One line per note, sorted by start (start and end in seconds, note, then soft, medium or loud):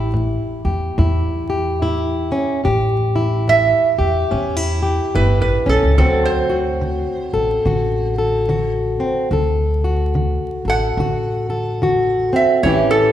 0.00 0.36 A1 medium
0.00 0.98 E4 medium
0.00 0.64 G4 medium
0.14 0.91 A2 medium
0.65 0.90 E2 medium
0.65 1.49 G4 medium
0.98 2.29 E2 medium
0.98 1.75 A2 medium
0.98 1.81 E4 medium
1.50 2.61 G4 medium
1.82 2.59 A2 medium
1.82 2.61 E4 medium
2.32 2.60 C#4 medium
2.64 3.70 A1 medium
2.64 3.41 A2 medium
2.64 3.97 G4 medium
3.16 4.31 E4 medium
3.48 4.25 A2 medium
3.48 5.12 E5 loud
3.99 4.25 E2 medium
3.99 4.81 G4 medium
4.31 4.97 E2 medium
4.31 5.08 A2 medium
4.31 4.57 C#4 medium
4.57 5.14 E4 soft
4.83 5.94 G4 medium
5.15 5.38 G1 medium
5.15 5.92 A2 medium
5.15 5.95 E4 medium
5.15 5.40 B4 medium
5.41 5.64 A1 medium
5.41 5.69 B4 medium
5.66 5.81 B1 medium
5.66 5.95 C#4 medium
5.66 5.97 A4 medium
5.83 5.97 C#2 medium
5.98 7.03 D2 medium
5.98 6.75 D3 medium
5.98 9.28 F#3 medium
5.98 8.99 C4 medium
5.98 6.49 F#4 medium
5.98 6.25 A4 medium
6.25 8.72 C5 medium
6.50 7.66 F#4 medium
6.81 7.58 D3 medium
7.33 7.58 A1 medium
7.33 8.18 A4 medium
7.65 8.96 A1 medium
7.65 8.42 D3 medium
7.65 8.48 F#4 medium
8.18 9.33 A4 medium
8.49 9.25 D3 medium
8.49 9.28 F#4 medium
9.00 9.28 C4 medium
9.31 10.36 D2 medium
9.31 10.08 D3 medium
9.31 10.67 A4 medium
9.84 10.98 F#4 medium
10.15 10.91 D3 medium
10.65 10.90 A1 medium
10.65 11.49 A4 medium
10.70 12.32 F#5 loud
10.97 12.27 A1 medium
10.97 11.75 D3 medium
10.97 11.82 F#4 medium
11.50 12.67 A4 medium
11.82 12.58 D3 medium
11.82 12.61 F#4 medium
12.33 12.60 C4 medium
12.33 12.63 E5 medium
12.63 13.12 A1 medium
12.63 13.12 A2 medium
12.63 13.12 E3 medium
12.63 13.12 C#4 medium
12.63 13.12 E4 medium
12.63 12.90 C#5 medium
12.67 13.12 G4 medium
12.91 13.12 A4 medium